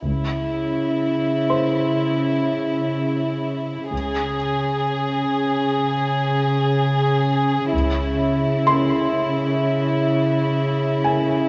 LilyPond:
<<
  \new Staff \with { instrumentName = "Felt piano" } { \time 4/4 \key cis \minor \tempo 4 = 63 r4. <bis' bis''>2~ <bis' bis''>8~ | <bis' bis''>8 r2. r8 | r4 bis''2~ bis''8 gis''8 | }
  \new Staff \with { instrumentName = "Violin section" } { \time 4/4 \key cis \minor e'1 | gis'1 | e'1 | }
  \new Staff \with { instrumentName = "Cello section" } { \clef bass \time 4/4 \key cis \minor cis1 | cis1 | cis1 | }
  \new Staff \with { instrumentName = "Double bass section" } { \clef bass \time 4/4 \key cis \minor cis,4 r2. | cis,4 r2. | cis,4 r2. | }
>>